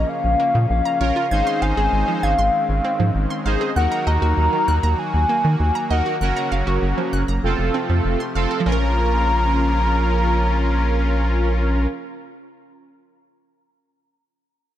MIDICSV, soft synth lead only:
0, 0, Header, 1, 2, 480
1, 0, Start_track
1, 0, Key_signature, -5, "minor"
1, 0, Tempo, 612245
1, 1030, Time_signature, 4, 2, 24, 8
1, 11586, End_track
2, 0, Start_track
2, 0, Title_t, "Soft synth lead"
2, 0, Program_c, 0, 80
2, 0, Note_on_c, 0, 75, 98
2, 70, Note_on_c, 0, 77, 105
2, 82, Note_off_c, 0, 75, 0
2, 546, Note_off_c, 0, 77, 0
2, 550, Note_on_c, 0, 77, 104
2, 773, Note_off_c, 0, 77, 0
2, 790, Note_on_c, 0, 77, 108
2, 1270, Note_on_c, 0, 80, 122
2, 1281, Note_off_c, 0, 77, 0
2, 1749, Note_on_c, 0, 77, 108
2, 1761, Note_off_c, 0, 80, 0
2, 2710, Note_off_c, 0, 77, 0
2, 2950, Note_on_c, 0, 78, 105
2, 3190, Note_on_c, 0, 82, 123
2, 3202, Note_off_c, 0, 78, 0
2, 3911, Note_on_c, 0, 80, 110
2, 3923, Note_off_c, 0, 82, 0
2, 4632, Note_on_c, 0, 78, 87
2, 4644, Note_off_c, 0, 80, 0
2, 5351, Note_off_c, 0, 78, 0
2, 6791, Note_on_c, 0, 82, 104
2, 9306, Note_off_c, 0, 82, 0
2, 11586, End_track
0, 0, End_of_file